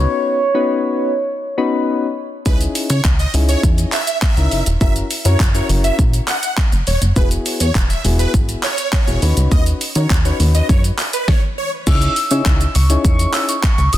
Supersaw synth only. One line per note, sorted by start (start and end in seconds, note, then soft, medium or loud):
2.46 2.58 B4 loud
2.90 3.02 C#5 medium
3.20 3.32 D#5 medium
3.49 3.61 C#5 medium
3.93 4.18 E5 medium
4.23 4.64 E5 loud
4.81 4.94 E5 loud
5.26 5.38 C#5 medium
5.55 5.67 C#5 medium
5.84 5.97 E5 medium
6.28 6.53 F#5 medium
6.87 7.00 C#5 medium
7.17 7.29 B4 loud
7.60 7.73 C#5 medium
7.90 8.02 E5 medium
8.19 8.32 B4 medium
8.64 8.88 C#5 medium
8.93 9.35 C#5 medium
9.52 9.64 D#5 loud
9.96 10.08 C#5 medium
10.25 10.38 C#5 medium
10.55 10.67 D#5 medium
10.69 10.82 C#5 medium
11.14 11.26 B4 medium
11.28 11.41 C#5 medium
11.58 11.70 C#5 medium